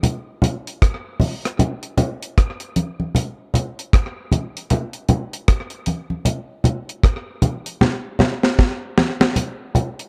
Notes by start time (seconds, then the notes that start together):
0.03 closed hi-hat, low conga
0.42 closed hi-hat, low conga
0.67 closed hi-hat
0.82 kick, cross-stick, closed hi-hat
1.20 open hi-hat, high conga, low conga
1.45 cross-stick, closed hi-hat
1.59 closed hi-hat, low conga
1.83 closed hi-hat
1.97 closed hi-hat, low conga
2.23 closed hi-hat
2.38 kick, cross-stick, closed hi-hat
2.60 closed hi-hat
2.76 closed hi-hat, high conga
3.00 high conga
3.15 closed hi-hat, low conga
3.54 closed hi-hat, low conga
3.79 closed hi-hat
3.93 kick, cross-stick, closed hi-hat
4.32 closed hi-hat, high conga, low conga
4.57 closed hi-hat
4.70 closed hi-hat, low conga
4.93 closed hi-hat
5.09 closed hi-hat, low conga
5.33 closed hi-hat
5.48 kick, cross-stick, closed hi-hat
5.70 closed hi-hat
5.86 closed hi-hat, high conga
6.10 high conga
6.25 closed hi-hat, low conga
6.64 closed hi-hat, low conga
6.89 closed hi-hat
7.04 kick, cross-stick, closed hi-hat
7.42 closed hi-hat, high conga, low conga
7.66 closed hi-hat
7.81 snare, low conga
8.19 snare, low conga
8.43 snare
8.59 kick, snare
8.98 snare, high conga
9.20 snare, high conga
9.36 closed hi-hat, low conga
9.75 closed hi-hat, low conga
9.99 closed hi-hat